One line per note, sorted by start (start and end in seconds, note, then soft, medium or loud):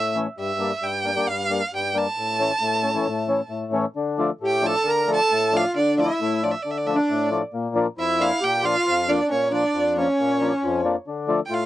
0.00 0.26 A2 medium
0.00 0.15 E5 medium
0.15 0.27 E3 medium
0.15 0.26 A3 medium
0.15 0.27 C#4 medium
0.38 0.71 G2 medium
0.38 0.85 E5 medium
0.60 0.71 G3 medium
0.60 0.71 A#3 medium
0.60 0.71 D4 medium
0.82 1.16 G2 medium
0.82 1.30 G5 medium
1.04 1.10 A#3 medium
1.04 1.11 D4 medium
1.16 1.28 G3 medium
1.16 1.28 A#3 medium
1.16 1.28 D4 medium
1.26 1.60 G2 medium
1.26 1.73 F5 medium
1.50 1.62 G3 medium
1.50 1.62 A#3 medium
1.50 1.62 D4 medium
1.73 2.06 G2 medium
1.73 2.00 G5 medium
1.94 2.06 G3 medium
1.94 2.06 A#3 medium
1.94 2.07 D4 medium
1.94 3.54 A5 loud
2.17 2.51 A2 medium
2.39 2.51 E3 medium
2.39 2.51 A3 medium
2.39 2.51 C#4 medium
2.61 2.95 A2 medium
2.82 2.89 A3 medium
2.82 2.90 C#4 medium
2.94 3.07 E3 medium
2.94 3.06 A3 medium
2.94 3.06 C#4 medium
3.06 3.40 A2 medium
3.27 3.40 E3 medium
3.27 3.40 A3 medium
3.27 3.41 C#4 medium
3.49 3.84 A2 medium
3.73 3.85 E3 medium
3.73 3.85 A3 medium
3.73 3.85 C#4 medium
3.96 4.30 D3 medium
4.18 4.31 F3 medium
4.18 4.30 A3 medium
4.18 4.30 D4 medium
4.41 4.75 A2 medium
4.41 4.64 G4 medium
4.46 4.68 G5 medium
4.62 4.75 F3 medium
4.62 4.74 A3 medium
4.62 4.75 D4 medium
4.66 4.86 A4 medium
4.66 4.92 A5 loud
4.84 5.18 D3 medium
4.84 5.10 A#4 medium
4.90 5.11 A#5 medium
5.07 5.20 F3 medium
5.07 5.19 A3 medium
5.07 5.20 D4 medium
5.07 5.56 A4 medium
5.13 5.59 A5 loud
5.31 5.65 A2 medium
5.53 5.64 F3 medium
5.53 5.64 A3 medium
5.53 5.65 D4 medium
5.53 5.78 F4 medium
5.57 5.76 F5 medium
5.75 6.09 D3 medium
5.75 6.00 D4 medium
5.75 5.97 D5 medium
5.98 6.09 F3 medium
5.98 6.09 A3 medium
5.98 6.09 D4 medium
5.98 6.20 E4 medium
5.98 6.46 E5 medium
6.21 6.54 A2 medium
6.21 6.42 E4 medium
6.43 6.54 F3 medium
6.43 6.54 A3 medium
6.43 6.54 D4 medium
6.43 6.52 D5 medium
6.51 6.64 E5 medium
6.62 6.98 D3 medium
6.62 6.72 D5 medium
6.71 6.79 E5 medium
6.77 6.88 D5 medium
6.87 6.98 F3 medium
6.87 6.98 A3 medium
6.87 6.98 D4 medium
6.87 6.98 E5 medium
6.95 7.29 D4 medium
6.95 7.33 D5 medium
7.10 7.42 A2 medium
7.31 7.42 F3 medium
7.31 7.42 A3 medium
7.31 7.43 D4 medium
7.53 7.87 A#2 medium
7.75 7.87 F3 medium
7.75 7.87 A#3 medium
7.75 7.87 D4 medium
7.98 8.31 F2 medium
7.98 8.40 E4 medium
7.98 8.23 E5 medium
8.20 8.31 F3 medium
8.20 8.31 A#3 medium
8.20 8.31 D4 medium
8.20 8.45 F5 loud
8.41 8.76 A#2 medium
8.41 8.64 G4 medium
8.41 8.67 G5 loud
8.63 8.75 F3 medium
8.63 8.75 A#3 medium
8.63 8.75 D4 medium
8.63 9.05 F4 medium
8.63 9.11 F5 loud
8.87 9.20 F2 medium
9.09 9.20 F3 medium
9.09 9.20 A#3 medium
9.09 9.31 D4 medium
9.09 9.20 D4 medium
9.09 9.30 D5 medium
9.28 9.64 A#2 medium
9.28 9.52 C#4 medium
9.28 9.51 C#5 medium
9.51 9.63 F3 medium
9.51 9.64 A#3 medium
9.51 9.97 D4 medium
9.51 9.64 D4 medium
9.51 9.94 D5 medium
9.74 10.07 F2 medium
9.96 10.08 F3 medium
9.96 10.08 A#3 medium
9.96 10.81 C#4 medium
9.96 10.08 D4 medium
9.96 10.82 C#5 medium
10.20 10.52 A#2 medium
10.40 10.52 F3 medium
10.40 10.52 A#3 medium
10.40 10.52 D4 medium
10.63 10.96 F2 medium
10.84 10.96 F3 medium
10.84 10.96 A#3 medium
10.84 10.96 D4 medium
11.07 11.40 D3 medium
11.28 11.40 F3 medium
11.28 11.40 A3 medium
11.28 11.40 D4 loud
11.46 11.56 G5 medium
11.50 11.66 A2 medium
11.50 11.66 F4 medium
11.54 11.66 F5 medium